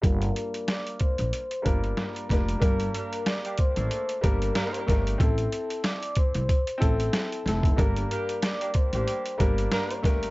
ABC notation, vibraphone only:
X:1
M:4/4
L:1/8
Q:"Swing 16ths" 1/4=93
K:Gdor
V:1 name="Vibraphone"
[Bb]2 [dd'] [cc']2 [Bb]3 | B2 [dd'] [cc']2 [Bb]3 | [Aa]2 [dd'] [cc']2 [Aa]3 | [Bb]2 [dd'] [cc']2 [Bb]3 |]